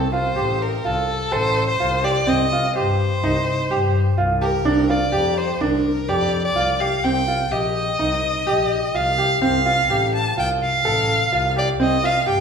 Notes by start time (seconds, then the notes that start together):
Already playing: C2 A4
0.13 F4 C5
0.36 A1 G4
0.62 A#4
0.84 C2 F4 A4
1.31 A1 A4 C5
1.69 C5
1.80 C2 F4
2.03 G4 D5
2.27 C2 C4 D#5
2.52 F4
2.75 G2 G4 C5
3.22 C2 D#4
3.69 G2 G4
4.18 C2 F4
4.41 G4 A#4
4.65 C2 D4
4.89 F4 D5
5.12 F2 G4
5.37 C5
5.60 C2 D4 A#4
6.07 F2 G4 D5
6.44 D5
6.54 C2 F4
6.80 G4 F5
7.03 C2 C4 G5
7.28 F4
7.51 A#1 G4 D#5
7.98 C2 D#4
8.45 A#1 G4
8.93 C2 F4 F5
9.18 G4
9.42 C2 C4 F5
9.65 F4
9.88 A1 G4
10.15 A5
10.36 C2 F4 G5
10.64 F5
10.84 A1 A4
11.31 C2 F4
11.56 G4 D5
11.79 C2 C4 D#5
12.04 F4 F5
12.25 G2 G4 G5